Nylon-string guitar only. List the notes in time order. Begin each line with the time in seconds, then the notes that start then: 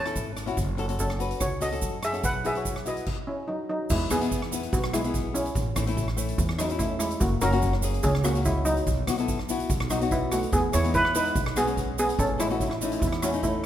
0.05 C#4 E4 A4
0.46 C#4 E4 F#4
0.77 C#4 F#4 A4
0.88 C#4 F#4 A4
1.19 C#4 F#4 B4
1.60 C#4 F#4 A4
1.71 C#4 F#4 A4
2.13 C#4 F#4 A4
2.44 E4 F#4 B4
2.55 E4 F#4 C#5
2.85 E4 F#4 B4
4.10 B3 E4 G#4
4.21 B3 E4 G#4
4.52 B3 E4 B4
4.93 B3 E4 G#4
5.04 B3 E4 G#4
5.76 A3 C#4 E4
5.87 A3 C#4 E4
6.17 A3 C#4 E4
6.58 A3 C#4 E4
6.69 A3 C#4 E4
7.41 A#3 C#4 F#4
7.51 A#3 C#4 F#4
7.82 A#3 C#4 G#4
8.24 A#3 C#4 F#4
8.35 A#3 C#4 F#4
9.07 B3 E4 F#4
9.18 B3 E4 A4
9.49 B3 E4 F#4
9.90 B3 D#4 F#4
10.01 B3 D#4 F#4
10.72 G#3 B3 E4
10.84 G#3 B3 D#4
11.13 G#3 B3 E4
11.56 G#3 B3 F#4
11.65 G#3 B3 C#4
12.38 A3 C#4 E4
12.49 A3 C#4 F#4
12.81 A3 C#4 D#4
13.22 A3 C#4 F#4
13.32 A3 C#4 D#4